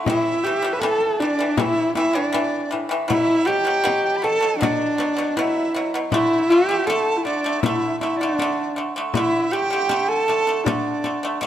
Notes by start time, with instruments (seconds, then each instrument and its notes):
0.05 pipa A2, horsehead fiddle E4, dizi E5, frame drum
0.10 pipa E3
0.44 pipa A2 E3, horsehead fiddle G4, frame drum
0.62 pipa A2 E3
0.73 horsehead fiddle B4
0.79 pipa A2, horsehead fiddle A4, dizi A5, frame drum
0.83 pipa E3
1.19 pipa A2 E3, horsehead fiddle D4, dizi D5, frame drum
1.39 pipa A2 E3
1.57 pipa A2 E3, horsehead fiddle E4, dizi E5, frame drum
1.95 pipa A2 E3, horsehead fiddle E4, dizi E5, frame drum
2.13 pipa A2 E3, horsehead fiddle D4, dizi D5
2.33 pipa A2 E3, frame drum
2.71 pipa A2 E3, frame drum
2.89 pipa A2 E3
3.08 pipa B2 F#3, horsehead fiddle E4, dizi E5, frame drum
3.45 pipa B2 F#3, horsehead fiddle G4, dizi G5, frame drum
3.65 pipa B2 F#3
3.84 pipa B2 F#3, frame drum
4.05 dizi G5
4.16 dizi B5
4.22 pipa B2 F#3, horsehead fiddle A4, dizi A5, frame drum
4.41 pipa B2 F#3
4.60 pipa B2 F#3, horsehead fiddle D4, dizi D5, frame drum
4.98 pipa B2 F#3, frame drum
5.17 pipa B2 F#3
5.36 pipa B2 F#3, horsehead fiddle E4, dizi E5, frame drum
5.74 pipa B2 F#3, frame drum
5.94 pipa B2 F#3
6.12 pipa D3 A3, horsehead fiddle E4, dizi E5, frame drum
6.50 pipa D3 A3, horsehead fiddle G4, frame drum
6.69 pipa D3 A3
6.86 pipa D3 A3, horsehead fiddle A4, dizi A5, frame drum
7.17 horsehead fiddle E4
7.24 pipa D3 A3, horsehead fiddle D4, dizi D5, frame drum
7.44 pipa D3 A3
7.61 pipa D3, dizi E5, frame drum
7.65 pipa A3, horsehead fiddle E4
8.00 pipa D3 A3, horsehead fiddle E4, dizi E5, frame drum
8.17 horsehead fiddle D4, dizi D5
8.21 pipa D3 A3
8.39 pipa D3 A3, frame drum
8.76 pipa D3 A3, frame drum
8.96 pipa D3 A3
9.13 pipa D3 A3, horsehead fiddle E4, dizi E5, frame drum
9.51 pipa D3 A3, horsehead fiddle G4, dizi G5, frame drum
9.70 pipa D3 A3
9.89 pipa D3 A3, frame drum
10.08 horsehead fiddle A4, dizi A5
10.28 pipa D3 A3, frame drum
10.47 pipa D3 A3
10.64 pipa D3 A3, horsehead fiddle D4, dizi D5, frame drum
11.04 pipa D3 A3, frame drum
11.23 pipa D3 A3
11.41 pipa D3 A3, frame drum